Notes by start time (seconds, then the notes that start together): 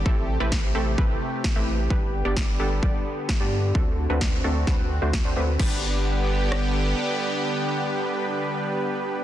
Already playing: G4
0.06 A1 C3 A3 C4 E4 G4 A4, kick
0.40 A1 A3 C4 E4 G4 B4
0.52 kick, snare
0.75 A1 A3 C4 E4 G4 A4
0.98 A1 A3 C4 E4 G4 B4, kick
1.44 kick, snare
1.56 A1 A3 C4 E4 G4 B4
1.90 G1 D3 G3 B3 D4 G4 B4, kick
2.25 G1 G3 B3 D4 G4 D5
2.37 kick, snare
2.60 G1 G3 B3 D4 G4 A4
2.83 G1 G3 B3 D4 G4 D5, kick
3.29 kick, snare
3.40 G2 G3 B3 D4 G4 D5
3.75 D2 A3 C4 D4 F#4 A4, kick
4.10 D2 A3 C4 D4 F#4 B4
4.21 kick, snare
4.44 D2 A3 C4 D4 F#4 A4
4.67 D2 A3 C4 D4 F#4 B4, kick, snare
5.02 D2 A3 C4 D4 F#4 C5
5.13 kick, snare
5.25 D2 A3 C4 D4 F#4 C5
5.36 D2 A3 C4 D4 F#4 B4
5.59 G1 D3 G3 B3 D4 G4 B4, kick, crash
6.52 cross-stick